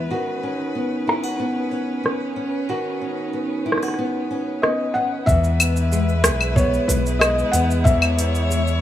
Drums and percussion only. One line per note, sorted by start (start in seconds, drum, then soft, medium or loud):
0.45 shaker medium
1.09 cross-stick medium
1.74 shaker medium
2.06 cross-stick medium
2.06 shaker soft
2.38 shaker soft
2.42 shaker soft
2.46 shaker soft
2.50 shaker soft
2.54 shaker soft
2.58 shaker medium
2.62 shaker medium
2.66 shaker medium
2.81 shaker soft
2.86 shaker soft
2.92 shaker soft
2.97 shaker soft
3.02 shaker medium
3.11 shaker medium
3.19 shaker soft
3.28 shaker soft
3.35 shaker soft
3.52 shaker soft
3.67 shaker medium
3.72 cross-stick medium
3.78 cross-stick soft
3.83 cross-stick soft
3.88 cross-stick soft
3.94 cross-stick soft
4.00 shaker soft
4.16 shaker soft
4.32 shaker medium
4.48 shaker soft
4.63 cross-stick medium
4.63 shaker soft
4.96 shaker medium
5.12 shaker soft
5.27 kick loud
5.27 shaker soft
5.44 shaker soft
5.60 open hi-hat medium
5.60 claves medium
5.60 shaker medium
5.77 shaker soft
5.92 shaker soft
6.09 shaker soft
6.24 cross-stick medium
6.24 open hi-hat loud
6.24 shaker medium
6.41 claves medium
6.41 shaker soft
6.56 kick loud
6.56 shaker soft
6.74 shaker soft
6.89 kick medium
6.89 open hi-hat medium
6.89 shaker medium
7.06 shaker soft
7.21 cross-stick medium
7.21 claves medium
7.21 shaker soft
7.39 shaker soft
7.53 open hi-hat medium
7.53 shaker medium
7.71 shaker soft
7.85 kick loud
7.85 shaker soft
8.02 claves medium
8.02 shaker soft
8.19 open hi-hat medium
8.35 shaker soft
8.51 shaker soft
8.67 shaker soft